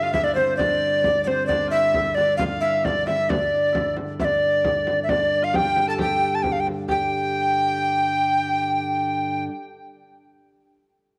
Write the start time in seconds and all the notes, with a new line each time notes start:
Already playing: G2 D3 A#3 D4
0.02 F4 F5
0.14 E4 E5, frame drum
0.24 D4 D5
0.35 C4 C5, frame drum
0.57 D4 D5, frame drum
1.04 D5, frame drum
1.24 C4 C5 D5, frame drum
1.47 D4 D5, frame drum
1.67 F4 E5
1.73 E4 E5
1.94 frame drum
2.15 D4 D5, frame drum
2.37 F4 F5, frame drum
2.61 E4 E5, frame drum
2.83 D4 D5, frame drum
3.06 E4 E5, frame drum
3.29 G2 D3 D4 D5, frame drum
3.72 E4, frame drum
3.97 frame drum
4.20 D4 D5 E5, frame drum
4.25 D5
4.64 frame drum
4.87 frame drum
5.03 E5
5.09 D4 D5, frame drum
5.42 F4 F5
5.53 G4 G5, frame drum
5.76 frame drum
5.88 A4 A5
5.98 G4 G5, frame drum
6.21 frame drum
6.35 A5
6.43 G5, frame drum
6.52 F5
6.60 G5
6.67 frame drum
6.88 G2 D3 G4 G5, frame drum